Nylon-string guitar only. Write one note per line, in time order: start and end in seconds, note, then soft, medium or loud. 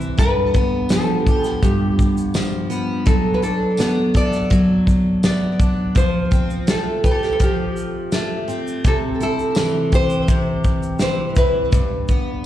0.00 0.19 C5 loud
0.19 0.92 B4 loud
0.92 1.46 A4 loud
1.46 1.64 G4 loud
1.64 2.67 G4 medium
3.06 3.34 A4 loud
3.34 3.42 B4 medium
3.43 4.16 A4 medium
4.17 5.24 D5 loud
5.25 5.97 D5 loud
5.98 6.65 C5 loud
6.70 7.04 A4 medium
7.04 7.11 B4 medium
7.11 7.21 A4 medium
7.23 7.32 G4 medium
7.33 7.41 A4 medium
7.44 8.46 G4 medium
8.87 8.97 A4 loud
9.23 9.95 A4 medium
9.95 11.01 C5 loud
11.02 11.37 C5 loud
11.38 12.45 B4 loud